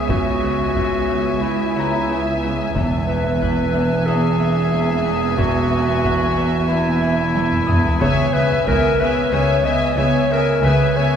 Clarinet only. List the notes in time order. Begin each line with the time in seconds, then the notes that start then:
0.10 F#4
1.41 E4
3.07 B4
4.06 G#4
5.38 F#4
6.69 E4
8.01 C#5
8.34 B4
8.68 A#4
9.00 B4
9.34 C#5
9.65 D#5
9.98 C#5
10.32 A#4
10.65 B4
10.96 C#5